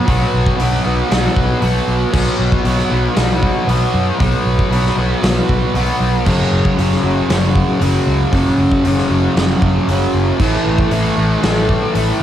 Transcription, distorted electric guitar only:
0.06 0.57 B2 loud
0.06 0.59 F#3 loud
0.06 0.60 B3 loud
0.58 1.09 B2 medium
0.58 0.87 F#3 medium
0.58 0.84 B3 medium
0.84 1.10 F#3 medium
0.84 1.12 B3 medium
1.09 1.60 B2 loud
1.09 1.61 F#3 loud
1.09 1.63 B3 loud
1.60 2.11 B2 medium
1.60 2.12 F#3 medium
1.60 2.14 B3 medium
2.11 2.63 B2 loud
2.11 2.65 F#3 loud
2.11 2.66 B3 loud
2.63 3.14 B2 medium
2.63 2.92 F#3 medium
2.63 2.89 B3 medium
2.89 3.16 F#3 medium
2.89 3.17 B3 medium
3.15 3.66 B2 loud
3.15 3.68 F#3 loud
3.15 3.69 B3 loud
3.67 4.17 B2 medium
3.67 4.19 F#3 medium
3.67 4.20 B3 medium
4.18 4.69 B2 medium
4.18 4.71 F#3 loud
4.18 4.72 B3 loud
4.70 5.21 B2 medium
4.70 4.99 F#3 medium
4.70 4.95 B3 loud
4.96 5.23 F#3 medium
4.96 5.24 B3 medium
5.22 5.73 B2 loud
5.22 5.76 F#3 loud
5.22 5.76 B3 loud
5.75 6.24 B2 medium
5.75 6.28 F#3 medium
5.75 6.26 B3 medium
6.25 6.77 F#2 medium
6.25 6.78 C#3 loud
6.25 6.80 F#3 loud
6.77 7.28 F#2 medium
6.77 7.05 C#3 medium
6.77 7.03 F#3 medium
7.03 7.29 C#3 medium
7.03 7.32 F#3 medium
7.29 7.79 F#2 loud
7.29 7.81 C#3 medium
7.29 7.83 F#3 loud
7.80 8.31 F#2 medium
7.80 8.32 C#3 medium
7.80 8.35 F#3 medium
8.32 8.82 F#2 medium
8.32 8.84 C#3 loud
8.32 8.86 F#3 loud
8.84 9.34 F#2 medium
8.84 9.11 C#3 medium
8.84 9.09 F#3 medium
9.09 9.35 C#3 medium
9.09 9.37 F#3 medium
9.35 9.86 F#2 loud
9.35 9.88 C#3 loud
9.35 9.90 F#3 loud
9.88 10.38 F#2 medium
9.88 10.38 C#3 medium
9.88 10.40 F#3 medium
10.39 10.89 A2 medium
10.39 10.91 E3 loud
10.39 10.92 A3 loud
10.90 11.41 A2 medium
10.90 11.18 E3 medium
10.90 11.16 A3 medium
11.16 11.42 E3 medium
11.16 11.44 A3 medium
11.41 11.92 A2 medium
11.41 11.94 E3 loud
11.41 11.96 A3 loud
11.93 12.23 A2 medium
11.93 12.23 E3 medium
11.93 12.23 A3 medium

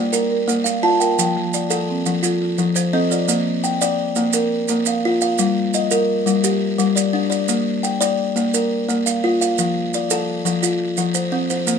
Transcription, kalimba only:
0.00 0.31 A#3 medium
0.13 0.66 A#4 medium
0.48 0.83 A#3 medium
0.64 1.18 F5 medium
0.83 1.18 F4 medium
0.83 1.36 A5 medium
1.00 1.36 G5 medium
1.19 1.54 F3 medium
1.54 2.06 D5 medium
1.70 2.06 A4 medium
2.06 2.41 F3 medium
2.23 2.76 F4 medium
2.58 2.94 F3 medium
2.76 3.29 C5 medium
2.93 3.29 C4 medium
2.93 3.46 D#5 medium
3.12 3.47 D5 medium
3.28 3.64 A#3 medium
3.64 4.16 G5 medium
3.82 4.17 D5 medium
4.16 4.51 A#3 medium
4.34 4.87 A#4 medium
4.70 5.04 A#3 medium
4.87 5.21 F5 medium
5.05 5.40 F4 medium
5.22 5.57 F5 medium
5.39 5.74 G3 medium
5.74 6.27 D#5 medium
5.91 6.26 A#4 medium
6.26 6.61 G3 medium
6.44 6.96 G4 medium
6.78 7.14 G3 medium
6.96 7.29 D5 medium
7.13 7.48 D4 medium
7.30 7.65 D5 medium
7.48 7.83 A#3 medium
7.83 8.36 G5 medium
8.01 8.36 D5 medium
8.36 8.71 A#3 medium
8.54 9.06 A#4 medium
8.89 9.23 A#3 medium
9.06 9.40 F5 medium
9.24 9.58 F4 medium
9.41 9.76 F5 medium
9.59 9.93 F3 medium
9.95 10.46 D5 medium
10.11 10.46 A4 medium
10.45 10.80 F3 medium
10.63 11.15 F4 medium
10.98 11.32 F3 medium
11.15 11.49 C5 medium
11.32 11.67 C4 medium
11.50 11.79 C5 medium
11.67 11.79 A#3 medium

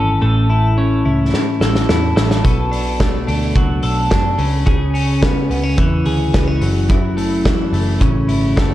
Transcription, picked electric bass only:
0.00 0.18 G#1 medium
0.22 1.02 A1 loud
1.06 1.29 C#2 medium
1.34 1.57 A2 medium
1.61 1.85 A1 medium
1.89 2.13 E2 medium
2.17 2.41 A1 medium
2.45 3.24 B1 medium
3.28 3.52 D2 medium
3.56 3.79 C#2 medium
3.84 4.07 B1 medium
4.11 4.35 F#2 medium
4.39 5.33 C#2 medium
5.51 5.74 C#2 medium
5.78 6.02 E2 medium
6.07 6.30 D2 medium
6.35 6.58 C#2 medium
6.61 7.56 F#1 medium
7.72 7.96 F#1 medium
8.01 8.25 A1 medium
8.29 8.52 G#1 medium
8.57 8.74 F#1 medium

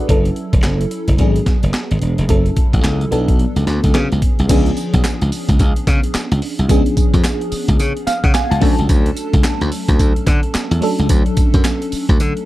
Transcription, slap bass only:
0.09 0.29 F#1 loud
0.53 0.61 E1 medium
0.64 0.84 F#1 medium
1.08 1.16 F#1 medium
1.19 1.39 G#1 loud
1.63 1.71 F#1 medium
1.91 1.99 G#1 medium
2.02 2.14 E1 loud
2.18 2.26 F1 medium
2.29 2.49 F#1 loud
2.74 2.81 A1 medium
2.84 3.04 C#2 medium
3.12 3.45 B1 medium
3.56 3.64 C#2 medium
3.67 3.79 D2 loud
3.84 3.92 C#2 medium
3.95 4.07 C#3 medium
4.12 4.20 C#2 medium
4.39 4.47 C2 medium
4.50 4.70 C#2 loud
4.94 5.02 B1 medium
5.22 5.29 C#2 medium
5.49 5.57 C#2 loud
5.60 5.72 C#2 loud
5.87 6.00 C#3 loud
6.15 muted slap bass stroke soft
6.32 6.39 C#2 loud
6.59 6.67 C2 medium
6.70 6.82 C#2 loud
7.14 7.22 F2 medium
7.52 muted slap bass stroke soft
7.69 7.77 C#2 loud
7.80 7.92 C#3 loud
8.07 muted slap bass stroke soft
8.24 8.32 C#3 loud
8.51 8.59 C#2 loud
8.62 8.74 D2 loud
8.79 8.87 C#2 medium
8.89 9.10 D2 loud
9.34 9.42 C#2 medium
9.61 9.69 D2 medium
9.89 9.97 D2 loud
10.00 10.12 D2 loud
10.27 10.40 D3 loud
10.55 muted slap bass stroke soft
10.71 10.79 E2 loud
10.99 11.07 C#2 medium
11.10 11.22 D2 loud
11.54 11.62 F#2 medium
11.93 muted slap bass stroke soft
12.09 12.17 D2 medium
12.20 12.32 D3 loud

